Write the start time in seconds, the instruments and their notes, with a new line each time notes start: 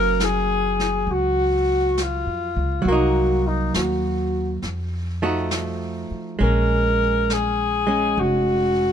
Already playing: upright bass F#1, hollow-body jazz guitar F#3 A#3 C#4, alto saxophone A#4
0.20 alto saxophone G#4, snare, hi-hat pedal
0.79 snare
1.07 upright bass C#2, brush sweep
1.12 alto saxophone F#4
1.97 snare, hi-hat pedal
2.02 alto saxophone F4
2.27 upright bass F2
2.56 upright bass C#2
2.82 upright bass C2, hollow-body jazz guitar F#3, brush sweep
2.87 hollow-body jazz guitar A#3, alto saxophone F#4
2.92 hollow-body jazz guitar D#4
3.47 alto saxophone D#4
3.74 upright bass D#2, alto saxophone F#4, snare, hi-hat pedal
4.62 upright bass F2, brush sweep, snare
5.22 hollow-body jazz guitar F3 A3 D#4 F#4
5.51 snare, hi-hat pedal
6.11 muted upright bass stroke
6.39 upright bass A#1, hollow-body jazz guitar G#3 C#4, brush sweep
6.43 alto saxophone A#4
7.30 alto saxophone G#4, snare, hi-hat pedal
7.87 hollow-body jazz guitar G#3 C#4
8.17 upright bass F1, alto saxophone F#4, brush sweep